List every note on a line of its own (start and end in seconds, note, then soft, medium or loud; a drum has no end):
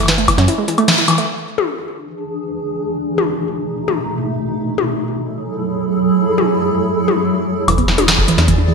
0.00 0.33 F#1 loud
0.00 high woodblock soft
0.03 high woodblock soft
0.06 0.14 E3 loud
0.06 snare loud
0.06 closed hi-hat medium
0.06 high woodblock soft
0.18 0.21 A3 medium
0.18 closed hi-hat soft
0.28 0.31 E3 medium
0.28 kick loud
0.28 closed hi-hat medium
0.28 high woodblock medium
0.38 0.48 F#2 loud
0.38 0.44 C#4 medium
0.38 snare medium
0.38 closed hi-hat medium
0.48 0.54 E3 medium
0.48 closed hi-hat medium
0.58 0.64 G#3 medium
0.68 0.74 E3 medium
0.68 closed hi-hat medium
0.78 0.84 A3 loud
0.78 closed hi-hat medium
0.78 high woodblock medium
0.88 0.94 E3 medium
0.88 snare loud
0.88 closed hi-hat medium
0.98 1.04 E4 medium
0.98 closed hi-hat soft
1.08 1.16 E3 loud
1.08 closed hi-hat medium
1.08 high woodblock medium
1.11 high woodblock soft
1.13 high woodblock soft
1.16 1.24 A3 medium
1.16 closed hi-hat medium
1.16 high woodblock soft
1.20 high woodblock soft
1.26 2.87 E3 medium
1.26 2.87 D4 medium
1.26 2.86 G#4 medium
1.26 high woodblock soft
1.58 high tom medium
2.88 4.46 B2 medium
2.88 4.46 A3 medium
2.88 4.46 D#4 medium
3.18 high tom medium
3.88 high tom medium
4.48 7.65 F#3 medium
4.48 7.65 E4 medium
4.48 7.65 G#4 medium
4.48 7.65 A4 medium
4.78 high tom medium
6.38 high tom medium
7.08 high tom medium
7.68 8.33 E1 loud
7.68 7.74 E3 medium
7.68 8.74 E4 medium
7.68 8.74 G#4 medium
7.68 8.74 D5 medium
7.68 closed hi-hat medium
7.68 high woodblock medium
7.78 7.84 B3 medium
7.78 kick loud
7.78 closed hi-hat soft
7.88 7.94 E3 medium
7.88 snare medium
7.98 8.04 D4 loud
7.98 closed hi-hat medium
7.98 high tom medium
8.08 8.14 E3 medium
8.08 snare loud
8.08 closed hi-hat medium
8.18 8.24 G#4 medium
8.18 kick loud
8.28 8.37 E3 loud
8.28 closed hi-hat medium
8.38 8.74 E2 loud
8.38 8.44 D4 medium
8.38 snare medium
8.38 closed hi-hat medium
8.48 8.54 E3 loud
8.48 kick loud
8.48 closed hi-hat medium
8.58 8.61 D4 medium
8.68 8.72 E3 medium